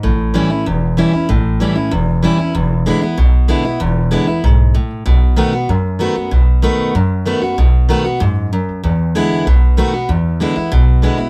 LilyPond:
<<
  \new Staff \with { instrumentName = "Steel-string acoustic guitar" } { \time 4/4 \key e \major \tempo 4 = 191 << { r4 <e g cis' e'>8 <cis' e'>8 r4 <e g cis' e'>8 <cis' e'>8 | r4 <e g cis' e'>8 <cis' e'>8 r4 <e g cis' e'>8 <cis' e'>8 | r4 <d gis b e'>8 <b e'>8 r4 <d gis b e'>8 <b e'>8 | r4 <d gis b e'>8 <b e'>8 r2 |
r4 <dis a b fis'>8 <b fis'>8 r4 <dis a b fis'>8 <b fis'>8 | r4 <dis a b fis'>4 r4 <dis a b fis'>8 <b fis'>8 | r4 <dis a b fis'>8 <b fis'>8 r2 | r4 <d gis b e'>4 r4 <dis a b fis'>8 <b fis'>8 |
r4 <d gis b e'>8 <b e'>8 r4 <d gis b e'>8 <b e'>8 | } \\ { a,2 e,2 | a,2 e,2 | e,2 b,2 | e,2 gis,4 a,4 |
b,2 fis,2 | b,2 fis,2 | b,2 gis,4 fis,4 | e,2 b,2 |
e,2 b,2 | } >> }
  \new Staff \with { instrumentName = "Upright bass" } { \clef bass \time 4/4 \key e \major a,,4. r8 e,,4. r8 | a,,4. r8 e,,4. r8 | e,,4. r8 b,,4. r8 | e,,4. r8 b,,4. r8 |
b,,4. r8 fis,4. r8 | b,,4. r8 fis,4. r8 | b,,4. r8 fis,4. r8 | e,4. r8 b,,4. r8 |
e,4. r8 b,,4. r8 | }
>>